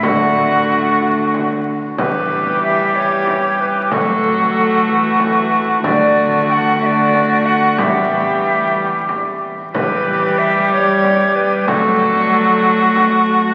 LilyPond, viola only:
\new Staff \with { instrumentName = "Viola" } { \time 6/8 \key e \dorian \tempo 4. = 62 a2~ a8 r8 | g2. | a2. | a4. a4. |
g2~ g8 r8 | g2. | a2. | }